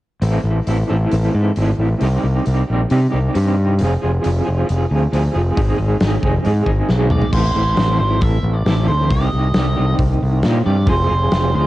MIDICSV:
0, 0, Header, 1, 5, 480
1, 0, Start_track
1, 0, Key_signature, 0, "minor"
1, 0, Tempo, 443131
1, 258, Time_signature, 4, 2, 24, 8
1, 12639, End_track
2, 0, Start_track
2, 0, Title_t, "Lead electric guitar"
2, 0, Program_c, 0, 29
2, 7708, Note_on_c, 0, 74, 82
2, 7931, Note_off_c, 0, 74, 0
2, 7935, Note_on_c, 0, 72, 81
2, 8637, Note_off_c, 0, 72, 0
2, 8650, Note_on_c, 0, 72, 73
2, 8893, Note_on_c, 0, 76, 93
2, 8906, Note_off_c, 0, 72, 0
2, 9252, Note_on_c, 0, 74, 87
2, 9271, Note_off_c, 0, 76, 0
2, 9616, Note_off_c, 0, 74, 0
2, 9621, Note_on_c, 0, 72, 75
2, 9856, Note_on_c, 0, 75, 87
2, 9870, Note_off_c, 0, 72, 0
2, 10775, Note_off_c, 0, 75, 0
2, 11548, Note_on_c, 0, 74, 85
2, 11790, Note_off_c, 0, 74, 0
2, 11803, Note_on_c, 0, 72, 84
2, 12502, Note_off_c, 0, 72, 0
2, 12515, Note_on_c, 0, 72, 74
2, 12639, Note_off_c, 0, 72, 0
2, 12639, End_track
3, 0, Start_track
3, 0, Title_t, "Clean electric guitar"
3, 0, Program_c, 1, 27
3, 236, Note_on_c, 1, 45, 77
3, 245, Note_on_c, 1, 52, 79
3, 247, Note_on_c, 1, 60, 80
3, 256, Note_on_c, 1, 64, 89
3, 258, Note_on_c, 1, 69, 79
3, 459, Note_off_c, 1, 69, 0
3, 472, Note_on_c, 1, 69, 65
3, 475, Note_off_c, 1, 64, 0
3, 488, Note_on_c, 1, 64, 60
3, 492, Note_off_c, 1, 60, 0
3, 497, Note_on_c, 1, 60, 48
3, 707, Note_off_c, 1, 52, 0
3, 720, Note_on_c, 1, 52, 61
3, 724, Note_off_c, 1, 60, 0
3, 726, Note_off_c, 1, 64, 0
3, 726, Note_off_c, 1, 69, 0
3, 729, Note_off_c, 1, 45, 0
3, 729, Note_on_c, 1, 60, 63
3, 739, Note_on_c, 1, 64, 67
3, 739, Note_on_c, 1, 69, 67
3, 955, Note_off_c, 1, 69, 0
3, 966, Note_off_c, 1, 64, 0
3, 968, Note_on_c, 1, 69, 77
3, 972, Note_off_c, 1, 52, 0
3, 977, Note_off_c, 1, 60, 0
3, 979, Note_on_c, 1, 64, 69
3, 981, Note_on_c, 1, 60, 71
3, 985, Note_on_c, 1, 52, 61
3, 990, Note_on_c, 1, 45, 63
3, 1195, Note_off_c, 1, 52, 0
3, 1208, Note_off_c, 1, 64, 0
3, 1208, Note_on_c, 1, 52, 64
3, 1209, Note_off_c, 1, 60, 0
3, 1214, Note_on_c, 1, 60, 67
3, 1218, Note_off_c, 1, 69, 0
3, 1221, Note_on_c, 1, 64, 63
3, 1231, Note_on_c, 1, 69, 73
3, 1442, Note_off_c, 1, 69, 0
3, 1455, Note_on_c, 1, 69, 69
3, 1457, Note_off_c, 1, 64, 0
3, 1467, Note_off_c, 1, 45, 0
3, 1470, Note_on_c, 1, 64, 64
3, 1480, Note_off_c, 1, 60, 0
3, 1485, Note_on_c, 1, 60, 58
3, 1681, Note_off_c, 1, 52, 0
3, 1685, Note_on_c, 1, 45, 85
3, 1694, Note_off_c, 1, 64, 0
3, 1694, Note_on_c, 1, 52, 81
3, 1696, Note_off_c, 1, 60, 0
3, 1696, Note_off_c, 1, 69, 0
3, 1701, Note_on_c, 1, 60, 87
3, 1707, Note_on_c, 1, 64, 93
3, 1709, Note_on_c, 1, 69, 81
3, 1928, Note_off_c, 1, 69, 0
3, 1941, Note_on_c, 1, 69, 60
3, 1945, Note_off_c, 1, 64, 0
3, 1958, Note_on_c, 1, 64, 58
3, 1962, Note_off_c, 1, 60, 0
3, 1966, Note_on_c, 1, 60, 57
3, 2161, Note_off_c, 1, 45, 0
3, 2166, Note_off_c, 1, 52, 0
3, 2169, Note_off_c, 1, 69, 0
3, 2177, Note_off_c, 1, 64, 0
3, 2181, Note_on_c, 1, 48, 72
3, 2187, Note_on_c, 1, 55, 82
3, 2188, Note_off_c, 1, 60, 0
3, 2193, Note_on_c, 1, 60, 85
3, 2202, Note_on_c, 1, 63, 81
3, 2205, Note_on_c, 1, 67, 92
3, 2408, Note_off_c, 1, 67, 0
3, 2421, Note_on_c, 1, 67, 58
3, 2423, Note_off_c, 1, 63, 0
3, 2436, Note_on_c, 1, 63, 58
3, 2441, Note_off_c, 1, 60, 0
3, 2445, Note_on_c, 1, 60, 53
3, 2644, Note_off_c, 1, 55, 0
3, 2657, Note_on_c, 1, 55, 59
3, 2659, Note_off_c, 1, 63, 0
3, 2662, Note_off_c, 1, 60, 0
3, 2665, Note_off_c, 1, 48, 0
3, 2668, Note_off_c, 1, 67, 0
3, 2681, Note_on_c, 1, 67, 68
3, 2885, Note_off_c, 1, 67, 0
3, 2898, Note_on_c, 1, 67, 80
3, 2909, Note_off_c, 1, 55, 0
3, 2910, Note_on_c, 1, 63, 72
3, 2917, Note_on_c, 1, 60, 72
3, 2922, Note_on_c, 1, 55, 70
3, 2929, Note_on_c, 1, 48, 64
3, 3116, Note_off_c, 1, 55, 0
3, 3129, Note_on_c, 1, 55, 66
3, 3136, Note_off_c, 1, 63, 0
3, 3139, Note_off_c, 1, 67, 0
3, 3140, Note_off_c, 1, 60, 0
3, 3144, Note_on_c, 1, 60, 60
3, 3149, Note_on_c, 1, 63, 75
3, 3152, Note_on_c, 1, 67, 69
3, 3361, Note_off_c, 1, 67, 0
3, 3374, Note_on_c, 1, 67, 68
3, 3379, Note_off_c, 1, 63, 0
3, 3392, Note_on_c, 1, 63, 66
3, 3394, Note_off_c, 1, 60, 0
3, 3399, Note_off_c, 1, 48, 0
3, 3399, Note_on_c, 1, 60, 53
3, 3608, Note_off_c, 1, 55, 0
3, 3617, Note_on_c, 1, 48, 78
3, 3621, Note_on_c, 1, 55, 89
3, 3623, Note_off_c, 1, 63, 0
3, 3623, Note_off_c, 1, 67, 0
3, 3625, Note_off_c, 1, 60, 0
3, 3629, Note_on_c, 1, 60, 86
3, 3636, Note_on_c, 1, 63, 82
3, 3636, Note_on_c, 1, 67, 91
3, 3846, Note_off_c, 1, 67, 0
3, 3856, Note_off_c, 1, 63, 0
3, 3859, Note_on_c, 1, 67, 63
3, 3885, Note_off_c, 1, 60, 0
3, 3889, Note_on_c, 1, 60, 50
3, 4085, Note_off_c, 1, 55, 0
3, 4089, Note_off_c, 1, 48, 0
3, 4089, Note_on_c, 1, 53, 77
3, 4090, Note_off_c, 1, 67, 0
3, 4095, Note_off_c, 1, 60, 0
3, 4100, Note_on_c, 1, 60, 79
3, 4106, Note_on_c, 1, 65, 85
3, 4116, Note_on_c, 1, 68, 79
3, 4337, Note_off_c, 1, 65, 0
3, 4339, Note_off_c, 1, 68, 0
3, 4344, Note_on_c, 1, 68, 68
3, 4350, Note_on_c, 1, 65, 61
3, 4363, Note_off_c, 1, 60, 0
3, 4368, Note_on_c, 1, 60, 49
3, 4556, Note_off_c, 1, 53, 0
3, 4569, Note_on_c, 1, 53, 66
3, 4571, Note_off_c, 1, 65, 0
3, 4576, Note_off_c, 1, 60, 0
3, 4580, Note_on_c, 1, 60, 69
3, 4584, Note_on_c, 1, 65, 66
3, 4588, Note_off_c, 1, 68, 0
3, 4592, Note_on_c, 1, 68, 65
3, 4812, Note_off_c, 1, 68, 0
3, 4816, Note_on_c, 1, 68, 73
3, 4818, Note_off_c, 1, 65, 0
3, 4831, Note_on_c, 1, 65, 81
3, 4834, Note_off_c, 1, 53, 0
3, 4835, Note_off_c, 1, 60, 0
3, 4839, Note_on_c, 1, 60, 77
3, 4847, Note_on_c, 1, 53, 68
3, 5036, Note_off_c, 1, 53, 0
3, 5049, Note_on_c, 1, 53, 64
3, 5056, Note_off_c, 1, 60, 0
3, 5057, Note_off_c, 1, 65, 0
3, 5060, Note_on_c, 1, 60, 67
3, 5065, Note_off_c, 1, 68, 0
3, 5070, Note_on_c, 1, 65, 71
3, 5299, Note_off_c, 1, 65, 0
3, 5299, Note_on_c, 1, 68, 66
3, 5312, Note_on_c, 1, 65, 72
3, 5322, Note_off_c, 1, 60, 0
3, 5326, Note_on_c, 1, 60, 61
3, 5527, Note_off_c, 1, 53, 0
3, 5539, Note_off_c, 1, 65, 0
3, 5540, Note_on_c, 1, 53, 79
3, 5543, Note_off_c, 1, 60, 0
3, 5548, Note_on_c, 1, 60, 79
3, 5550, Note_off_c, 1, 68, 0
3, 5552, Note_on_c, 1, 65, 88
3, 5563, Note_on_c, 1, 68, 90
3, 5773, Note_off_c, 1, 68, 0
3, 5786, Note_on_c, 1, 68, 64
3, 5790, Note_off_c, 1, 65, 0
3, 5803, Note_on_c, 1, 65, 58
3, 5809, Note_off_c, 1, 60, 0
3, 5813, Note_on_c, 1, 60, 55
3, 6011, Note_off_c, 1, 53, 0
3, 6011, Note_on_c, 1, 44, 82
3, 6014, Note_off_c, 1, 68, 0
3, 6019, Note_on_c, 1, 51, 81
3, 6023, Note_off_c, 1, 65, 0
3, 6024, Note_on_c, 1, 56, 88
3, 6030, Note_off_c, 1, 60, 0
3, 6030, Note_on_c, 1, 63, 86
3, 6034, Note_on_c, 1, 60, 87
3, 6038, Note_on_c, 1, 68, 89
3, 6239, Note_off_c, 1, 68, 0
3, 6247, Note_off_c, 1, 63, 0
3, 6252, Note_on_c, 1, 68, 65
3, 6253, Note_off_c, 1, 60, 0
3, 6260, Note_off_c, 1, 56, 0
3, 6260, Note_on_c, 1, 63, 65
3, 6266, Note_on_c, 1, 60, 54
3, 6273, Note_on_c, 1, 56, 58
3, 6477, Note_off_c, 1, 56, 0
3, 6491, Note_off_c, 1, 60, 0
3, 6495, Note_off_c, 1, 63, 0
3, 6501, Note_off_c, 1, 44, 0
3, 6502, Note_off_c, 1, 68, 0
3, 6504, Note_on_c, 1, 60, 67
3, 6505, Note_off_c, 1, 51, 0
3, 6508, Note_on_c, 1, 63, 66
3, 6515, Note_on_c, 1, 68, 65
3, 6722, Note_off_c, 1, 68, 0
3, 6735, Note_off_c, 1, 63, 0
3, 6735, Note_on_c, 1, 68, 77
3, 6742, Note_off_c, 1, 60, 0
3, 6748, Note_on_c, 1, 63, 77
3, 6750, Note_on_c, 1, 56, 65
3, 6755, Note_on_c, 1, 60, 79
3, 6760, Note_on_c, 1, 51, 68
3, 6762, Note_on_c, 1, 44, 68
3, 6970, Note_off_c, 1, 56, 0
3, 6975, Note_off_c, 1, 60, 0
3, 6982, Note_off_c, 1, 63, 0
3, 6983, Note_on_c, 1, 56, 66
3, 6988, Note_on_c, 1, 60, 69
3, 6995, Note_off_c, 1, 68, 0
3, 6995, Note_on_c, 1, 63, 73
3, 7008, Note_on_c, 1, 68, 78
3, 7203, Note_off_c, 1, 68, 0
3, 7210, Note_off_c, 1, 63, 0
3, 7216, Note_on_c, 1, 68, 75
3, 7223, Note_on_c, 1, 63, 75
3, 7224, Note_off_c, 1, 60, 0
3, 7230, Note_off_c, 1, 56, 0
3, 7235, Note_off_c, 1, 51, 0
3, 7236, Note_off_c, 1, 44, 0
3, 7237, Note_on_c, 1, 60, 56
3, 7243, Note_on_c, 1, 56, 58
3, 7460, Note_on_c, 1, 44, 92
3, 7461, Note_off_c, 1, 56, 0
3, 7467, Note_off_c, 1, 63, 0
3, 7469, Note_on_c, 1, 51, 87
3, 7470, Note_off_c, 1, 60, 0
3, 7474, Note_off_c, 1, 68, 0
3, 7474, Note_on_c, 1, 56, 93
3, 7480, Note_on_c, 1, 63, 89
3, 7483, Note_on_c, 1, 60, 94
3, 7487, Note_on_c, 1, 68, 97
3, 7693, Note_off_c, 1, 68, 0
3, 7706, Note_on_c, 1, 68, 68
3, 7710, Note_off_c, 1, 63, 0
3, 7718, Note_off_c, 1, 60, 0
3, 7723, Note_on_c, 1, 63, 67
3, 7730, Note_off_c, 1, 56, 0
3, 7731, Note_on_c, 1, 60, 60
3, 7743, Note_on_c, 1, 56, 54
3, 7930, Note_off_c, 1, 44, 0
3, 7932, Note_off_c, 1, 51, 0
3, 7933, Note_off_c, 1, 68, 0
3, 7934, Note_off_c, 1, 60, 0
3, 7937, Note_off_c, 1, 56, 0
3, 7937, Note_on_c, 1, 45, 76
3, 7942, Note_off_c, 1, 63, 0
3, 7942, Note_on_c, 1, 52, 80
3, 7947, Note_on_c, 1, 60, 83
3, 7956, Note_on_c, 1, 64, 79
3, 7962, Note_on_c, 1, 69, 85
3, 8168, Note_off_c, 1, 69, 0
3, 8181, Note_on_c, 1, 69, 57
3, 8188, Note_off_c, 1, 64, 0
3, 8199, Note_off_c, 1, 60, 0
3, 8201, Note_on_c, 1, 64, 53
3, 8204, Note_on_c, 1, 60, 48
3, 8404, Note_off_c, 1, 52, 0
3, 8417, Note_on_c, 1, 52, 59
3, 8422, Note_off_c, 1, 45, 0
3, 8427, Note_off_c, 1, 64, 0
3, 8435, Note_off_c, 1, 60, 0
3, 8435, Note_off_c, 1, 69, 0
3, 8439, Note_on_c, 1, 60, 70
3, 8440, Note_on_c, 1, 64, 65
3, 8448, Note_on_c, 1, 69, 64
3, 8648, Note_off_c, 1, 69, 0
3, 8661, Note_on_c, 1, 69, 61
3, 8669, Note_off_c, 1, 64, 0
3, 8682, Note_on_c, 1, 64, 57
3, 8688, Note_off_c, 1, 60, 0
3, 8693, Note_on_c, 1, 60, 49
3, 8902, Note_off_c, 1, 52, 0
3, 9384, Note_on_c, 1, 45, 89
3, 9392, Note_off_c, 1, 64, 0
3, 9392, Note_off_c, 1, 69, 0
3, 9394, Note_off_c, 1, 60, 0
3, 9398, Note_on_c, 1, 60, 87
3, 9399, Note_on_c, 1, 52, 88
3, 9405, Note_on_c, 1, 64, 85
3, 9405, Note_on_c, 1, 69, 100
3, 9614, Note_off_c, 1, 69, 0
3, 9627, Note_on_c, 1, 69, 60
3, 9628, Note_off_c, 1, 64, 0
3, 9641, Note_on_c, 1, 64, 56
3, 9647, Note_off_c, 1, 60, 0
3, 9651, Note_on_c, 1, 60, 55
3, 9850, Note_off_c, 1, 45, 0
3, 9851, Note_off_c, 1, 69, 0
3, 9857, Note_off_c, 1, 52, 0
3, 9859, Note_off_c, 1, 64, 0
3, 9873, Note_on_c, 1, 48, 77
3, 9879, Note_on_c, 1, 55, 83
3, 9881, Note_off_c, 1, 60, 0
3, 9886, Note_on_c, 1, 60, 87
3, 9894, Note_on_c, 1, 63, 90
3, 9898, Note_on_c, 1, 67, 93
3, 10094, Note_off_c, 1, 67, 0
3, 10105, Note_off_c, 1, 63, 0
3, 10107, Note_on_c, 1, 67, 60
3, 10118, Note_on_c, 1, 63, 59
3, 10132, Note_off_c, 1, 60, 0
3, 10136, Note_on_c, 1, 60, 51
3, 10334, Note_off_c, 1, 55, 0
3, 10347, Note_off_c, 1, 63, 0
3, 10347, Note_on_c, 1, 55, 59
3, 10348, Note_off_c, 1, 48, 0
3, 10355, Note_off_c, 1, 60, 0
3, 10355, Note_off_c, 1, 67, 0
3, 10360, Note_on_c, 1, 60, 62
3, 10360, Note_on_c, 1, 63, 65
3, 10368, Note_on_c, 1, 67, 65
3, 10567, Note_off_c, 1, 67, 0
3, 10580, Note_on_c, 1, 67, 68
3, 10585, Note_off_c, 1, 63, 0
3, 10598, Note_on_c, 1, 63, 59
3, 10601, Note_off_c, 1, 60, 0
3, 10605, Note_on_c, 1, 60, 51
3, 10824, Note_off_c, 1, 55, 0
3, 11288, Note_on_c, 1, 48, 78
3, 11294, Note_on_c, 1, 55, 93
3, 11296, Note_off_c, 1, 63, 0
3, 11302, Note_off_c, 1, 60, 0
3, 11305, Note_off_c, 1, 67, 0
3, 11306, Note_on_c, 1, 60, 86
3, 11309, Note_on_c, 1, 63, 94
3, 11318, Note_on_c, 1, 67, 94
3, 11523, Note_off_c, 1, 67, 0
3, 11532, Note_off_c, 1, 63, 0
3, 11536, Note_on_c, 1, 67, 73
3, 11545, Note_on_c, 1, 63, 53
3, 11557, Note_off_c, 1, 60, 0
3, 11562, Note_on_c, 1, 60, 54
3, 11758, Note_off_c, 1, 48, 0
3, 11761, Note_off_c, 1, 55, 0
3, 11763, Note_off_c, 1, 67, 0
3, 11767, Note_off_c, 1, 63, 0
3, 11771, Note_on_c, 1, 53, 87
3, 11778, Note_off_c, 1, 60, 0
3, 11782, Note_on_c, 1, 60, 83
3, 11784, Note_on_c, 1, 65, 76
3, 11792, Note_on_c, 1, 68, 97
3, 11994, Note_off_c, 1, 68, 0
3, 11998, Note_on_c, 1, 68, 67
3, 12003, Note_off_c, 1, 65, 0
3, 12016, Note_on_c, 1, 65, 59
3, 12021, Note_off_c, 1, 60, 0
3, 12025, Note_on_c, 1, 60, 50
3, 12246, Note_off_c, 1, 53, 0
3, 12258, Note_off_c, 1, 60, 0
3, 12259, Note_on_c, 1, 53, 66
3, 12261, Note_off_c, 1, 65, 0
3, 12263, Note_on_c, 1, 60, 68
3, 12274, Note_on_c, 1, 65, 68
3, 12281, Note_off_c, 1, 68, 0
3, 12286, Note_on_c, 1, 68, 63
3, 12495, Note_off_c, 1, 68, 0
3, 12500, Note_on_c, 1, 68, 68
3, 12501, Note_off_c, 1, 65, 0
3, 12514, Note_on_c, 1, 65, 66
3, 12516, Note_off_c, 1, 60, 0
3, 12520, Note_on_c, 1, 60, 55
3, 12639, Note_off_c, 1, 53, 0
3, 12639, Note_off_c, 1, 60, 0
3, 12639, Note_off_c, 1, 65, 0
3, 12639, Note_off_c, 1, 68, 0
3, 12639, End_track
4, 0, Start_track
4, 0, Title_t, "Fingered electric bass"
4, 0, Program_c, 2, 33
4, 241, Note_on_c, 2, 33, 86
4, 407, Note_off_c, 2, 33, 0
4, 478, Note_on_c, 2, 33, 79
4, 645, Note_off_c, 2, 33, 0
4, 731, Note_on_c, 2, 33, 85
4, 895, Note_off_c, 2, 33, 0
4, 981, Note_on_c, 2, 33, 73
4, 1142, Note_off_c, 2, 33, 0
4, 1221, Note_on_c, 2, 33, 77
4, 1382, Note_off_c, 2, 33, 0
4, 1457, Note_on_c, 2, 44, 78
4, 1619, Note_off_c, 2, 44, 0
4, 1702, Note_on_c, 2, 32, 82
4, 1863, Note_off_c, 2, 32, 0
4, 1933, Note_on_c, 2, 33, 70
4, 2097, Note_off_c, 2, 33, 0
4, 2182, Note_on_c, 2, 36, 85
4, 2344, Note_off_c, 2, 36, 0
4, 2425, Note_on_c, 2, 36, 76
4, 2586, Note_off_c, 2, 36, 0
4, 2675, Note_on_c, 2, 36, 81
4, 2833, Note_off_c, 2, 36, 0
4, 2923, Note_on_c, 2, 34, 75
4, 3078, Note_off_c, 2, 34, 0
4, 3152, Note_on_c, 2, 48, 84
4, 3311, Note_off_c, 2, 48, 0
4, 3393, Note_on_c, 2, 36, 74
4, 3552, Note_off_c, 2, 36, 0
4, 3630, Note_on_c, 2, 43, 84
4, 4123, Note_on_c, 2, 29, 92
4, 4140, Note_off_c, 2, 43, 0
4, 4279, Note_off_c, 2, 29, 0
4, 4371, Note_on_c, 2, 29, 76
4, 4524, Note_off_c, 2, 29, 0
4, 4609, Note_on_c, 2, 29, 91
4, 4763, Note_off_c, 2, 29, 0
4, 4854, Note_on_c, 2, 29, 74
4, 5007, Note_off_c, 2, 29, 0
4, 5091, Note_on_c, 2, 29, 80
4, 5244, Note_off_c, 2, 29, 0
4, 5316, Note_on_c, 2, 38, 84
4, 5474, Note_off_c, 2, 38, 0
4, 5551, Note_on_c, 2, 38, 76
4, 5711, Note_off_c, 2, 38, 0
4, 5801, Note_on_c, 2, 29, 81
4, 5958, Note_off_c, 2, 29, 0
4, 6036, Note_on_c, 2, 32, 90
4, 6195, Note_off_c, 2, 32, 0
4, 6270, Note_on_c, 2, 32, 78
4, 6430, Note_off_c, 2, 32, 0
4, 6512, Note_on_c, 2, 32, 85
4, 6672, Note_off_c, 2, 32, 0
4, 6748, Note_on_c, 2, 29, 76
4, 6909, Note_off_c, 2, 29, 0
4, 7000, Note_on_c, 2, 44, 86
4, 7157, Note_off_c, 2, 44, 0
4, 7222, Note_on_c, 2, 32, 76
4, 7385, Note_off_c, 2, 32, 0
4, 7472, Note_on_c, 2, 35, 83
4, 7791, Note_off_c, 2, 35, 0
4, 7942, Note_on_c, 2, 33, 86
4, 8168, Note_off_c, 2, 33, 0
4, 8175, Note_on_c, 2, 33, 72
4, 8405, Note_off_c, 2, 33, 0
4, 8419, Note_on_c, 2, 33, 90
4, 8646, Note_off_c, 2, 33, 0
4, 8664, Note_on_c, 2, 32, 76
4, 8889, Note_off_c, 2, 32, 0
4, 8906, Note_on_c, 2, 33, 83
4, 9125, Note_off_c, 2, 33, 0
4, 9132, Note_on_c, 2, 33, 82
4, 9362, Note_off_c, 2, 33, 0
4, 9380, Note_on_c, 2, 33, 75
4, 9606, Note_off_c, 2, 33, 0
4, 9620, Note_on_c, 2, 38, 74
4, 9845, Note_off_c, 2, 38, 0
4, 9869, Note_on_c, 2, 36, 89
4, 10090, Note_off_c, 2, 36, 0
4, 10114, Note_on_c, 2, 36, 80
4, 10332, Note_off_c, 2, 36, 0
4, 10351, Note_on_c, 2, 36, 89
4, 10570, Note_off_c, 2, 36, 0
4, 10606, Note_on_c, 2, 36, 73
4, 10814, Note_off_c, 2, 36, 0
4, 10820, Note_on_c, 2, 36, 85
4, 11044, Note_off_c, 2, 36, 0
4, 11074, Note_on_c, 2, 36, 86
4, 11291, Note_off_c, 2, 36, 0
4, 11318, Note_on_c, 2, 46, 78
4, 11533, Note_off_c, 2, 46, 0
4, 11549, Note_on_c, 2, 43, 77
4, 11773, Note_on_c, 2, 29, 92
4, 11789, Note_off_c, 2, 43, 0
4, 11998, Note_off_c, 2, 29, 0
4, 12037, Note_on_c, 2, 29, 79
4, 12251, Note_off_c, 2, 29, 0
4, 12263, Note_on_c, 2, 29, 91
4, 12483, Note_off_c, 2, 29, 0
4, 12501, Note_on_c, 2, 38, 74
4, 12639, Note_off_c, 2, 38, 0
4, 12639, End_track
5, 0, Start_track
5, 0, Title_t, "Drums"
5, 241, Note_on_c, 9, 46, 48
5, 349, Note_off_c, 9, 46, 0
5, 726, Note_on_c, 9, 46, 44
5, 834, Note_off_c, 9, 46, 0
5, 1209, Note_on_c, 9, 46, 49
5, 1317, Note_off_c, 9, 46, 0
5, 1690, Note_on_c, 9, 46, 49
5, 1798, Note_off_c, 9, 46, 0
5, 2176, Note_on_c, 9, 46, 47
5, 2284, Note_off_c, 9, 46, 0
5, 2663, Note_on_c, 9, 46, 40
5, 2771, Note_off_c, 9, 46, 0
5, 3141, Note_on_c, 9, 46, 42
5, 3250, Note_off_c, 9, 46, 0
5, 3627, Note_on_c, 9, 46, 44
5, 3735, Note_off_c, 9, 46, 0
5, 4100, Note_on_c, 9, 46, 47
5, 4208, Note_off_c, 9, 46, 0
5, 4591, Note_on_c, 9, 46, 47
5, 4699, Note_off_c, 9, 46, 0
5, 5078, Note_on_c, 9, 46, 49
5, 5186, Note_off_c, 9, 46, 0
5, 5557, Note_on_c, 9, 46, 46
5, 5665, Note_off_c, 9, 46, 0
5, 6032, Note_on_c, 9, 46, 51
5, 6033, Note_on_c, 9, 36, 111
5, 6140, Note_off_c, 9, 46, 0
5, 6141, Note_off_c, 9, 36, 0
5, 6502, Note_on_c, 9, 46, 49
5, 6505, Note_on_c, 9, 38, 96
5, 6611, Note_off_c, 9, 46, 0
5, 6614, Note_off_c, 9, 38, 0
5, 6746, Note_on_c, 9, 36, 77
5, 6855, Note_off_c, 9, 36, 0
5, 6984, Note_on_c, 9, 46, 46
5, 7092, Note_off_c, 9, 46, 0
5, 7218, Note_on_c, 9, 36, 76
5, 7326, Note_off_c, 9, 36, 0
5, 7460, Note_on_c, 9, 38, 49
5, 7569, Note_off_c, 9, 38, 0
5, 7692, Note_on_c, 9, 45, 75
5, 7800, Note_off_c, 9, 45, 0
5, 7816, Note_on_c, 9, 43, 71
5, 7925, Note_off_c, 9, 43, 0
5, 7937, Note_on_c, 9, 36, 102
5, 7937, Note_on_c, 9, 49, 86
5, 8045, Note_off_c, 9, 49, 0
5, 8046, Note_off_c, 9, 36, 0
5, 8416, Note_on_c, 9, 46, 48
5, 8419, Note_on_c, 9, 38, 93
5, 8524, Note_off_c, 9, 46, 0
5, 8527, Note_off_c, 9, 38, 0
5, 8538, Note_on_c, 9, 38, 30
5, 8646, Note_off_c, 9, 38, 0
5, 8897, Note_on_c, 9, 46, 51
5, 8903, Note_on_c, 9, 36, 106
5, 9006, Note_off_c, 9, 46, 0
5, 9011, Note_off_c, 9, 36, 0
5, 9384, Note_on_c, 9, 46, 49
5, 9387, Note_on_c, 9, 38, 98
5, 9492, Note_off_c, 9, 46, 0
5, 9495, Note_off_c, 9, 38, 0
5, 9866, Note_on_c, 9, 36, 110
5, 9866, Note_on_c, 9, 46, 54
5, 9974, Note_off_c, 9, 36, 0
5, 9974, Note_off_c, 9, 46, 0
5, 10338, Note_on_c, 9, 46, 45
5, 10341, Note_on_c, 9, 38, 99
5, 10446, Note_off_c, 9, 46, 0
5, 10449, Note_off_c, 9, 38, 0
5, 10822, Note_on_c, 9, 36, 107
5, 10825, Note_on_c, 9, 46, 47
5, 10930, Note_off_c, 9, 36, 0
5, 10933, Note_off_c, 9, 46, 0
5, 11296, Note_on_c, 9, 46, 45
5, 11299, Note_on_c, 9, 38, 97
5, 11404, Note_off_c, 9, 46, 0
5, 11408, Note_off_c, 9, 38, 0
5, 11775, Note_on_c, 9, 36, 106
5, 11777, Note_on_c, 9, 46, 44
5, 11883, Note_off_c, 9, 36, 0
5, 11886, Note_off_c, 9, 46, 0
5, 12258, Note_on_c, 9, 46, 47
5, 12261, Note_on_c, 9, 38, 96
5, 12366, Note_off_c, 9, 46, 0
5, 12370, Note_off_c, 9, 38, 0
5, 12639, End_track
0, 0, End_of_file